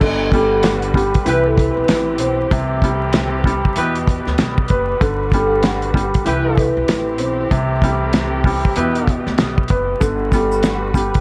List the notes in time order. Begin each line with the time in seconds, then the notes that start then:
0.00 G1 D3 G3 F#4 B4, kick, crash
0.32 G3 A4, kick, closed hi-hat
0.63 snare, closed hi-hat
0.82 closed hi-hat
0.94 G3 G4, kick, closed hi-hat
1.14 kick, closed hi-hat
1.25 C2 E3 C4 E4 G4 B4, closed hi-hat
1.46 A4
1.57 B4, kick, closed hi-hat
1.77 B1
1.88 A1, snare, closed hi-hat
2.18 B1 C4, closed hi-hat
2.51 C2 C3 A3 C4, kick, closed hi-hat
2.82 G3, kick, closed hi-hat
3.13 snare, closed hi-hat
3.44 G3, kick, closed hi-hat
3.65 kick
3.76 E2 B2 G3 E4 G4 B4, closed hi-hat
3.95 closed hi-hat
4.07 kick, closed hi-hat
4.27 D2, snare
4.38 B1, snare, closed hi-hat
4.58 kick
4.68 F#1 B4, kick, closed hi-hat
5.00 G1 D3 F#4, kick, closed hi-hat
5.32 G3 A4, kick, closed hi-hat
5.63 snare, closed hi-hat
5.82 closed hi-hat
5.94 G3 G4, kick, closed hi-hat
6.14 kick, closed hi-hat
6.23 C2 E3 C4 E4 G4 B4, closed hi-hat
6.46 A4
6.58 B4, kick, closed hi-hat
6.77 B1
6.88 A1, snare, closed hi-hat
7.18 B1 C4, closed hi-hat
7.51 C2 C3 A3, kick, closed hi-hat
7.82 G3, kick, closed hi-hat
8.13 snare, closed hi-hat
8.44 G3, kick, open hi-hat
8.65 kick
8.75 E2 B2 G3 B3 E4 G4 B4, closed hi-hat
8.95 closed hi-hat
9.07 kick, closed hi-hat
9.27 D2, snare
9.38 B1, snare, closed hi-hat
9.58 kick
9.68 F#1 B4, kick, closed hi-hat
10.00 G1 D3 G3 F#4 B4, kick, closed hi-hat, shaker
10.32 G3 A4, kick, closed hi-hat, shaker
10.52 shaker
10.63 snare, closed hi-hat, shaker
10.94 G3 G4, kick, closed hi-hat, shaker
11.14 kick, closed hi-hat